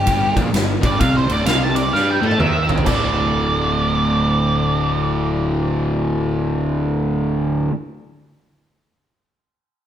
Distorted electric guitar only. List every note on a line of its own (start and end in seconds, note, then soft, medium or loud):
0.06 0.35 G2 loud
0.35 0.51 A#2 medium
0.51 0.75 G2 medium
0.81 0.98 G2 loud
0.99 1.27 C3 loud
1.27 1.45 D2 loud
1.45 1.92 C3 loud
1.93 2.21 G3 loud
2.21 2.38 A3 loud
2.39 2.85 D#3 medium
2.84 7.69 D2 medium
2.84 7.72 A2 loud
2.88 7.73 D3 loud